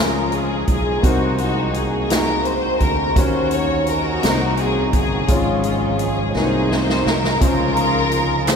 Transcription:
Already playing: C#2 C#3 F3 G#3 C#4 F4 G#4 A#4 C6
0.00 A#4
0.32 G#4, closed hi-hat
0.67 B1 G#4, kick, closed hi-hat
1.02 C2 C3 A#3 C4 D#4 F#4 C5, kick, closed hi-hat
1.38 F#4, closed hi-hat
1.74 G#4, closed hi-hat
2.09 A#3 D#4 F#4 G#4 A#4, snare, closed hi-hat
2.45 C5, closed hi-hat
2.80 D2 A#4, kick, closed hi-hat
3.15 D#2 D#3 A#3 C#4 D#4 F#4 C5, kick, closed hi-hat
3.51 C#5, closed hi-hat
3.87 D#4 F#4 A#4, closed hi-hat
4.21 C2 C3 A#3 C4 C#4 F#4 C5, snare, closed hi-hat
4.29 D#4
4.57 G#4, closed hi-hat
4.93 G1 G#4, kick, closed hi-hat
5.27 G#1 G#2 F3 G#3 C#4 F4 G#4 C#5, kick, closed hi-hat
5.63 F4, closed hi-hat
5.99 G#4, closed hi-hat
6.34 C2 C3 D#3 A#3 D#4 F#4 G#4 B4, snare
6.44 C5
6.72 C5, snare
6.89 snare
7.06 C2 A#4, snare
7.24 snare
7.40 C#2 C#3 F3 G#3 C#4 F4 G#4 A#4 C5, kick, closed hi-hat
7.44 F4
7.77 closed hi-hat
8.11 closed hi-hat
8.46 G#3 C#4 F4 G#4 C5, snare, clap, closed hi-hat

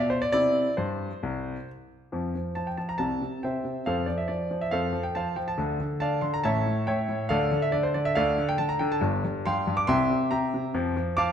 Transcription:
Already playing: B2 F4
0.10 C5
0.22 D5
0.32 C3 C4 E4 D5
0.77 G2 C5
1.23 C2
2.12 F2 F3
2.35 F3
2.55 F3 A5
2.67 G5
2.77 F3 A5
2.89 A#5
2.98 C2 C3 A5
3.21 C3
3.43 C3 C5 E5 G5
3.65 C3
3.86 F2 F3 A4 C5 F5
4.06 F3 D5
4.18 E5
4.28 F3 D5
4.51 F3
4.61 E5
4.71 F2 F3 A4 C5 F5
4.93 F3
5.03 G5
5.15 F3 C5 F5 A5
5.36 F3 G5
5.48 A5
5.58 D2 D3
5.80 D3
6.00 D3 D5 F5 A5
6.21 D3 C6
6.34 A#5
6.44 A1 A2 C#5 E5 A5
6.66 A2
6.87 A2 C#5 E5 G5
7.09 A2
7.29 D2 D3 A4 D5 F5
7.52 D3
7.62 E5
7.72 D3 D5
7.83 C5
7.94 D3 D5
8.05 E5
8.15 D2 D3 A4 D5 F5
8.38 D3
8.49 G5
8.58 D3 A5
8.69 A#5
8.79 D3 G5
8.92 A5
9.01 G1 G2
9.24 G2
9.46 G2 F5 G5 C6
9.67 G2
9.77 D6
9.87 C2 C3 E5 G5 C6
10.10 C3
10.31 C3 E5 G5 A#5
10.54 C3
10.74 F2 F3
10.97 F3
11.17 F3 F5 A5 D6

